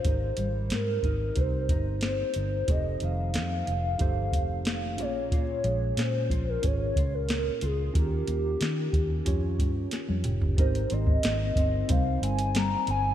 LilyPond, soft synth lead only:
\new Staff \with { instrumentName = "Soft synth lead" } { \time 4/4 \key ees \mixolydian \tempo 4 = 91 c''4 bes'4 c''4 c''4 | ees''8 f''2. des''8~ | des''4 c''8. bes'16 des''8. bes'8. aes'8 | g'2. r4 |
\key aes \major c''8 ees''4. f''8 aes''8 bes''8 aes''8 | }